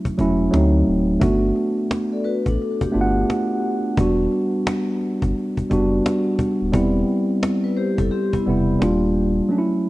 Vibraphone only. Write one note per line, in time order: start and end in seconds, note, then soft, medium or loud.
2.12 2.25 A4 medium
2.12 2.24 D5 medium
2.24 2.46 F#4 medium
2.24 2.46 B4 medium
2.48 2.80 D4 medium
2.48 2.80 A4 medium
2.81 3.81 D4 medium
2.81 3.81 G4 medium
7.64 7.76 E4 medium
7.64 7.76 B4 medium
7.77 7.98 G4 medium
7.77 7.98 C5 medium
7.99 8.11 E4 medium
7.99 8.10 A4 medium
8.11 8.33 C4 medium
8.11 8.32 G4 medium
8.33 8.78 B3 medium
8.33 8.78 E4 medium